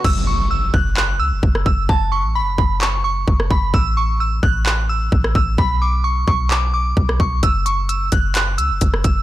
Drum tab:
CC |x---------------|----------------|----------------|----------------|
HH |----------------|----------------|----------------|----------------|
CP |--------x-------|--------x-------|--------x-------|--------x-------|
SD |-------------r--|-------------r--|-------------r--|-------------r--|
BD |o-----o-----o-o-|o-----o-----o-o-|o-----o-----o-o-|o-----o-----o-o-|

CC |----------------|
HH |x-x-x-x-x-x-x-x-|
CP |--------x-------|
SD |-------------r--|
BD |o-----o-----o-o-|